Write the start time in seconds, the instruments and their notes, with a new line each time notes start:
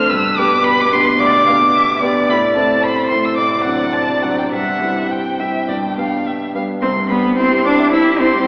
Already playing: grand piano F2 A3 D4 A4, violin C5 F6
0.10 grand piano G2, cello B2, violin B4 E6
0.38 grand piano B3 D4 G4, violin D6
0.64 violin B5
0.80 violin D6
0.93 grand piano B3 D4 G4, violin C6
1.19 grand piano D2, violin D5 D6
1.47 grand piano B3 D4 G4, violin F5
1.75 violin E5
2.02 grand piano B3 D4 G4, violin D5
2.29 grand piano A2, cello C3, violin B5
2.56 grand piano A3 C4 E4, violin A5
2.83 violin C5 B5
3.09 grand piano A3 C4 E4, violin C6
3.25 violin E6
3.37 grand piano A2, violin D5 D6
3.64 grand piano F#3 C4 D4, violin F#5
3.93 violin A5
4.23 grand piano F#3 C4 D4, violin F#5
4.38 violin G5
4.52 grand piano G2, violin E5 F#5
4.82 grand piano G3 C4 E4
5.11 violin G5
5.40 grand piano G3 C4 E4, violin E5
5.68 grand piano G2, cello B2, violin D5
5.97 grand piano G3 B3 D4, violin F5
6.27 violin E5
6.55 grand piano G3 B3 D4, violin F5
6.82 grand piano C2, cello C4, violin C6
6.96 grand piano G2
7.09 grand piano G3, cello B3, violin B5
7.24 grand piano C4
7.37 cello C4, grand piano E4, violin C6
7.52 grand piano G4
7.65 cello D4, grand piano C5, violin D6
7.80 grand piano E5
7.92 cello E4, violin G4 E6, grand piano C5
8.07 grand piano E4
8.19 cello C4, grand piano C4, violin C6
8.34 grand piano G3